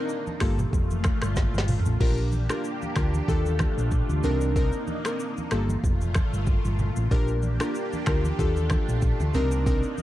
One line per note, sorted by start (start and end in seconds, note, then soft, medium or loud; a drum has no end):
0.00 0.40 A#3 medium
0.00 0.10 C4 medium
0.00 0.11 D4 medium
0.00 0.38 D4 medium
0.00 0.11 D#4 medium
0.00 0.40 D#4 medium
0.00 0.11 A#4 medium
0.09 shaker medium
0.27 high conga medium
0.27 shaker medium
0.40 0.64 G1 loud
0.40 1.99 A#2 medium
0.40 1.99 A3 medium
0.40 0.60 A#3 medium
0.40 0.60 F4 medium
0.40 1.99 F4 medium
0.40 0.60 G4 medium
0.40 0.60 A4 medium
0.40 finger snap medium
0.40 kick loud
0.40 cross-stick loud
0.40 open hi-hat medium
0.40 shaker soft
0.58 mid tom loud
0.58 high conga medium
0.58 shaker medium
0.73 1.09 F1 medium
0.73 kick loud
0.73 low conga medium
0.73 shaker medium
0.91 high conga medium
0.91 shaker medium
1.04 finger snap medium
1.04 kick loud
1.04 cross-stick loud
1.04 high conga medium
1.04 shaker medium
1.22 1.46 G1 medium
1.22 finger snap medium
1.22 cross-stick loud
1.22 shaker loud
1.36 kick loud
1.36 snare medium
1.36 shaker medium
1.54 1.77 G1 medium
1.54 snare medium
1.54 high conga medium
1.54 shaker medium
1.68 mid tom medium
1.68 open hi-hat medium
1.68 high conga medium
1.68 low conga medium
1.68 shaker medium
1.79 floor tom loud
1.86 1.97 A1 medium
1.86 shaker loud
2.00 2.47 A#1 loud
2.00 3.27 A#3 medium
2.00 2.19 D4 medium
2.00 5.48 D4 medium
2.00 2.19 F4 medium
2.00 2.19 G4 medium
2.00 4.22 G4 loud
2.00 2.19 A#4 loud
2.00 kick loud
2.00 crash medium
2.00 low conga medium
2.17 shaker soft
2.32 high conga medium
2.32 shaker medium
2.50 2.66 D4 medium
2.50 2.66 F4 medium
2.50 2.66 G4 medium
2.50 2.66 A#4 medium
2.50 finger snap medium
2.50 cross-stick loud
2.50 shaker loud
2.64 shaker medium
2.82 high conga medium
2.82 shaker medium
2.96 3.20 D2 loud
2.96 3.15 D4 medium
2.96 3.15 F4 medium
2.96 3.15 G4 medium
2.96 3.15 A#4 medium
2.96 finger snap medium
2.96 kick loud
2.96 cross-stick loud
2.96 shaker medium
3.14 high conga medium
3.14 shaker medium
3.28 3.64 D#2 loud
3.28 4.23 A3 medium
3.28 4.23 D4 medium
3.28 4.24 F4 medium
3.28 4.23 F4 medium
3.28 4.24 G4 medium
3.28 4.24 A4 loud
3.28 kick loud
3.28 low conga medium
3.28 shaker medium
3.46 high conga medium
3.46 shaker medium
3.59 finger snap medium
3.59 kick loud
3.59 cross-stick loud
3.59 high conga medium
3.59 shaker medium
3.78 4.01 A#1 loud
3.78 shaker loud
3.91 kick loud
3.91 shaker medium
4.09 4.20 D2 medium
4.09 high conga medium
4.09 shaker medium
4.23 4.70 C2 loud
4.23 5.50 A#3 medium
4.23 4.53 C4 loud
4.23 4.54 D4 loud
4.23 4.54 D#4 medium
4.23 5.50 D#4 medium
4.23 4.54 A#4 loud
4.23 high conga medium
4.23 low conga medium
4.23 shaker medium
4.41 shaker loud
4.56 4.75 C4 medium
4.56 4.75 D4 medium
4.56 4.75 D#4 medium
4.56 4.75 A#4 loud
4.56 kick loud
4.56 low conga medium
4.56 shaker medium
4.72 shaker soft
4.87 high conga medium
4.87 shaker medium
5.05 5.21 C4 medium
5.05 5.21 D4 medium
5.05 5.21 D#4 medium
5.05 5.21 A#4 medium
5.05 finger snap medium
5.05 cross-stick loud
5.05 shaker loud
5.20 shaker medium
5.37 high conga medium
5.37 shaker medium
5.51 5.75 G1 medium
5.51 7.10 A#2 medium
5.51 7.10 A3 medium
5.51 5.70 A#3 medium
5.51 5.70 F4 medium
5.51 7.10 F4 medium
5.51 5.70 G4 medium
5.51 5.71 A4 medium
5.51 finger snap medium
5.51 cross-stick loud
5.51 shaker medium
5.69 high conga medium
5.69 shaker loud
5.84 6.19 F1 medium
5.84 kick loud
5.84 low conga medium
5.84 shaker medium
6.01 high conga medium
6.01 shaker medium
6.14 finger snap medium
6.14 kick loud
6.14 cross-stick loud
6.14 high conga medium
6.14 shaker medium
6.33 6.56 G1 medium
6.33 shaker loud
6.46 kick loud
6.46 shaker medium
6.65 6.88 G1 medium
6.65 high conga medium
6.65 shaker medium
6.79 high conga medium
6.79 low conga medium
6.79 shaker medium
6.96 7.07 A1 medium
6.96 shaker loud
7.11 7.57 A#1 loud
7.11 8.38 A#3 medium
7.11 7.30 D4 loud
7.11 10.02 D4 medium
7.11 7.30 F4 medium
7.11 7.30 G4 medium
7.11 9.32 G4 medium
7.11 7.30 A#4 loud
7.11 kick loud
7.11 low conga medium
7.11 shaker medium
7.28 shaker medium
7.42 high conga medium
7.42 shaker medium
7.60 7.76 D4 medium
7.60 7.77 F4 medium
7.60 7.77 G4 medium
7.60 7.77 A#4 medium
7.60 finger snap medium
7.60 cross-stick loud
7.60 shaker loud
7.75 shaker medium
7.93 high conga medium
7.93 shaker medium
8.06 8.30 D2 loud
8.06 8.26 D4 medium
8.06 8.26 F4 medium
8.06 8.26 G4 medium
8.06 8.26 A#4 medium
8.06 finger snap medium
8.06 kick loud
8.06 cross-stick loud
8.06 shaker medium
8.24 high conga medium
8.24 shaker medium
8.39 8.75 D#2 loud
8.39 9.34 A3 medium
8.39 9.33 D4 medium
8.39 9.35 F4 medium
8.39 9.34 F4 medium
8.39 9.35 G4 medium
8.39 9.35 A4 loud
8.39 kick loud
8.39 low conga medium
8.39 shaker medium
8.56 high conga medium
8.56 shaker medium
8.70 finger snap medium
8.70 kick loud
8.70 cross-stick loud
8.70 high conga medium
8.70 shaker medium
8.88 9.11 A#1 medium
8.88 shaker loud
9.02 kick loud
9.02 shaker medium
9.20 9.31 D2 medium
9.20 high conga medium
9.20 shaker medium
9.34 9.81 C2 loud
9.34 10.02 A#3 medium
9.34 9.64 C4 loud
9.34 9.64 D4 loud
9.34 9.64 D#4 medium
9.34 10.02 D#4 medium
9.34 9.64 A#4 loud
9.34 high conga medium
9.34 low conga medium
9.34 shaker medium
9.51 shaker loud
9.66 9.85 C4 loud
9.66 9.85 D4 medium
9.66 9.85 D#4 medium
9.66 9.85 A#4 loud
9.66 kick loud
9.66 low conga medium
9.66 shaker medium
9.83 shaker soft
9.98 high conga medium
9.98 shaker medium